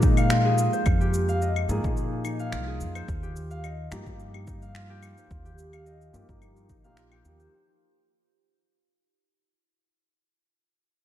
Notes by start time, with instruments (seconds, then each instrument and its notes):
Already playing: upright bass A#2, felt piano F3 G#3 A#3 D#4, harp F4 G4 C5 D#5 F5
0.02 harp D#4, kick, shaker
0.17 harp F5, claves, shaker
0.30 harp F4, finger snap, shaker
0.45 harp G#4
0.58 shaker
0.73 harp C5, shaker
0.86 upright bass F2, harp F4, kick, claves, shaker
1.01 harp G4, shaker
1.14 shaker
1.28 harp F5, shaker
1.42 harp D#5, shaker
1.56 claves
1.69 upright bass G#2, felt piano F3 A#3 D#4 G#4, shaker
1.83 upright bass A#2, felt piano F3 A#3 D#4, kick, shaker
1.87 felt piano G#4
1.97 shaker
2.25 harp D#4, claves, shaker
2.40 harp F5, shaker
2.52 upright bass C2, harp F4, finger snap, shaker
2.67 harp G#4
2.80 upright bass F2, shaker
2.95 harp C5, claves, shaker
3.08 upright bass D#2, kick, shaker
3.23 harp G4, shaker
3.36 shaker
3.51 harp F5, shaker
3.64 harp D#5, claves, shaker
3.91 upright bass G2, felt piano F3 A#3 D#4 G4, finger snap, shaker
4.05 upright bass G2, felt piano F3 A#3 D#4, kick, shaker
4.09 felt piano G4
4.20 shaker
4.34 claves
4.47 harp D#4, kick, shaker
4.62 harp F5, shaker
4.75 harp F4, finger snap, shaker
4.90 harp G4
5.03 claves, shaker
5.17 harp C5, shaker
5.30 upright bass D#2, harp F4, kick, shaker
5.45 harp G4, shaker
5.58 shaker
5.73 harp F5, claves, shaker
5.86 harp D#5, shaker
6.01 shaker
6.13 upright bass G2, felt piano F3 A#3 D#4 G4, shaker
6.28 upright bass G2, felt piano F3 A#3 D#4 G4, kick, shaker
6.42 claves, shaker
6.57 shaker
6.69 upright bass A#1, harp D#4, kick, shaker
6.83 felt piano F3 A#3 D#4 G4, harp F5, shaker
6.97 harp F4, finger snap, shaker
7.12 harp G4, claves
7.24 upright bass D#2, felt piano F3 A#3 D#4 G4, shaker
7.39 harp C5, shaker